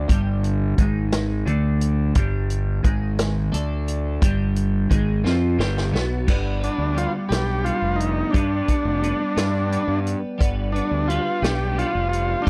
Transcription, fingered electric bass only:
0.09 0.74 G1 medium
0.78 1.43 G#1 medium
1.46 2.11 D2 medium
2.15 2.80 G1 medium
2.84 3.49 G#1 loud
3.54 4.18 D2 medium
4.22 4.87 G1 medium
4.91 5.22 G#1 medium
5.24 5.56 F2 medium
5.59 5.91 G1 medium
5.93 6.25 B1 medium
6.28 6.68 G1 medium
6.78 7.05 D2 medium
7.30 7.70 B1 medium
7.82 8.22 F1 medium
8.34 8.60 G2 medium
8.85 9.11 F1 medium
9.37 9.76 G2 medium
9.88 10.14 G2 medium
10.41 10.80 G1 medium
10.91 11.18 D2 medium
11.42 11.82 B1 medium
11.95 12.34 F1 medium
12.47 12.50 G2 medium

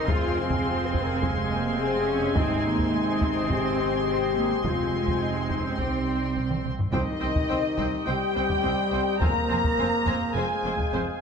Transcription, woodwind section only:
0.00 2.32 C4 medium
0.00 2.32 C5 medium
0.06 5.78 G#3 medium
0.06 2.35 F5 medium
2.39 6.62 C4 medium
2.39 4.66 C5 medium
2.39 4.66 D#5 medium
4.67 6.66 C5 medium
5.80 6.65 G4 medium
6.94 11.21 C4 medium
6.94 9.18 G4 medium
6.94 11.21 C5 medium
6.94 9.18 D#5 medium
9.21 11.21 G#4 medium
9.21 11.21 F5 medium

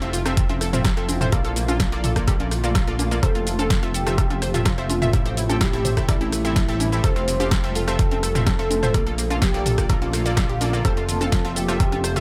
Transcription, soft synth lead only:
3.23 3.85 A4 loud
3.94 4.57 G4 loud
4.66 5.63 F4 loud
5.61 6.04 G4 medium
6.09 6.95 E4 loud
7.04 7.66 C5 loud
7.75 8.37 A4 loud
8.47 9.33 A4 loud
9.42 9.85 G4 medium
9.90 10.76 F4 loud
10.85 11.47 A4 loud
11.56 12.19 G4 loud

